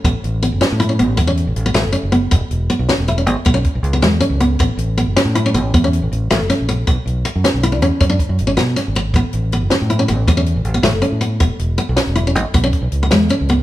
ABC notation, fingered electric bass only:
X:1
M:12/8
L:1/16
Q:3/8=106
K:A
V:1 name="Fingered electric bass" clef=bass
A,,, z A,,,3 F,,, z A,,3 A,,,2 E,,3 A,,, A,,,2 A,,, F,,, z F,,,3 | E,,, z E,,,2 z B,,, z E,,,3 G,,, z B,,,2 z B,,, C,,2 E,,2 z C,,3 | A,,, z A,,,3 F,,, z A,,3 A,,,2 E,,3 A,,, A,,,2 A,,, F,,, z _B,,,3 | B,,, z B,,,2 z F,, z B,,,3 E,, z F,,2 z F,, G,,,2 B,,2 z G,,,3 |
A,,, z A,,,3 F,,, z A,,3 A,,,2 E,,3 A,,, A,,,2 A,,, F,,, z A,,3 | E,,, z E,,,2 z B,,, z E,,,3 G,,, z B,,,2 z B,,, C,,2 E,,2 z C,,3 |]